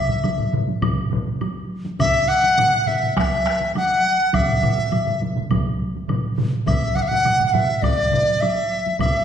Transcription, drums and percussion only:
0.09 taiko low-mid, taiko mid, taiko high
0.24 taiko low-mid, taiko mid, taiko high, high woodblock
0.38 taiko low-mid, taiko mid
0.53 taiko low-mid, taiko mid, taiko high
0.68 taiko high
0.82 taiko, taiko low-mid, taiko mid, taiko high, high woodblock
1.11 taiko low-mid, taiko mid
1.27 taiko high
1.41 taiko high, high woodblock
1.85 taiko high
1.99 taiko, taiko low-mid, taiko mid, taiko high, high woodblock
2.29 high woodblock
2.43 taiko high
2.58 taiko low-mid, taiko mid, taiko high, high woodblock
2.87 taiko low-mid, taiko mid, taiko high
3.02 taiko low-mid, taiko mid
3.17 taiko rim, taiko, taiko high, high woodblock
3.46 taiko rim
3.61 taiko high
3.75 taiko high, high woodblock
4.33 taiko, taiko low-mid, taiko mid, taiko high, high woodblock
4.48 taiko low-mid, taiko mid
4.63 taiko low-mid, taiko mid, high woodblock
4.78 taiko high
4.92 taiko low-mid, taiko mid, taiko high, high woodblock
5.07 taiko low-mid, taiko mid
5.21 taiko low-mid, taiko mid, taiko high
5.36 taiko low-mid, taiko mid, taiko high
5.51 taiko, taiko low-mid, taiko mid, taiko high, high woodblock
5.95 taiko high
6.09 taiko low-mid, taiko mid, taiko high, high woodblock
6.38 taiko low-mid, taiko mid
6.53 taiko high
6.67 taiko, taiko low-mid, taiko mid, taiko high, high woodblock
6.95 taiko low-mid, taiko mid, high woodblock
7.11 taiko low-mid, taiko mid, taiko high
7.25 taiko low-mid, taiko mid, taiko high, high woodblock
7.39 taiko low-mid, taiko mid
7.54 taiko low-mid, taiko mid, taiko high
7.69 taiko high
7.82 taiko, taiko low-mid, taiko mid, taiko high, high woodblock
8.12 taiko low-mid, taiko mid
8.28 taiko high
8.42 taiko high, high woodblock
8.86 taiko high
8.99 taiko, taiko low-mid, taiko mid, taiko high, high woodblock

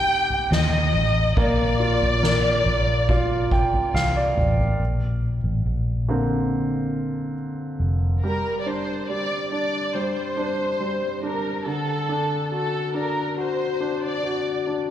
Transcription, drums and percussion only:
0.30 floor tom
0.52 snare
1.37 kick, floor tom
2.02 floor tom
2.23 snare
2.66 floor tom
3.09 kick, floor tom
3.51 kick
3.73 floor tom
3.95 snare
4.37 mid tom
4.59 floor tom

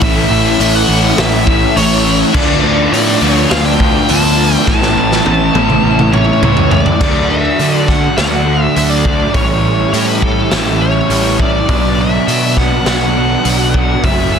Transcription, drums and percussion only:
0.01 kick, open hi-hat
0.60 open hi-hat
1.18 snare, open hi-hat
1.47 kick
1.77 open hi-hat
2.34 kick, crash
2.93 open hi-hat
3.51 snare, open hi-hat
3.80 kick
4.09 open hi-hat
4.67 kick, snare
4.83 snare
5.12 snare
5.26 high tom
5.55 high tom
5.70 mid tom
5.99 mid tom
6.13 mid tom
6.43 mid tom
6.57 floor tom
6.71 floor tom
6.86 floor tom
7.01 kick, crash
7.59 open hi-hat
7.88 kick, snare
8.18 snare, open hi-hat
8.76 open hi-hat
9.05 kick
9.34 kick, open hi-hat
9.93 open hi-hat
10.22 kick
10.51 snare, open hi-hat
11.10 open hi-hat
11.39 kick
11.69 kick, open hi-hat
12.28 open hi-hat
12.57 kick, snare
12.86 snare, open hi-hat
13.45 open hi-hat
13.74 kick
14.04 kick, open hi-hat

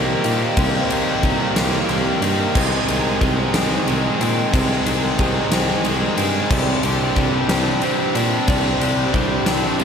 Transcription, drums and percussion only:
0.24 ride
0.57 kick, ride
0.90 ride
1.23 kick, ride
1.56 snare, ride
1.89 ride
2.22 ride
2.55 kick, crash
2.88 ride
3.21 kick, ride
3.54 snare, ride
3.88 ride
4.21 ride
4.54 kick, ride
4.86 ride
5.19 kick, ride
5.52 snare, ride
5.85 ride
6.18 ride
6.50 kick, crash
6.83 ride
7.16 kick, ride
7.49 snare, ride
7.81 ride
8.15 ride
8.48 kick, ride
8.81 ride
9.14 kick, ride
9.46 snare, ride
9.79 ride

